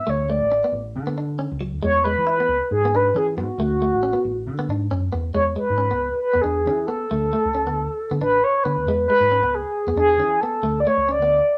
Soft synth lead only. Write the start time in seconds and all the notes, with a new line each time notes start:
Already playing: E5
0.09 C#5
0.30 D5
1.82 C#5
2.04 B4
2.27 B4
2.72 G#4
2.96 B4
3.17 G#4
3.36 F#4
5.33 C#5
5.57 B4
6.22 B4
6.41 G#4
6.86 A4
8.21 B4
8.44 C#5
8.63 B4
9.08 B4
9.55 G#4
10.00 G#4
10.41 A4
10.80 D5
10.87 C#5
11.11 D5